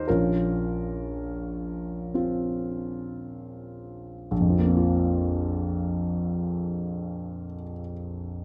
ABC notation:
X:1
M:6/8
L:1/8
Q:3/8=29
K:Bbm
V:1 name="Grand piano"
[B,,,DFB]3 [CF]3 | [B,,,F,,F,B,CF]6 |]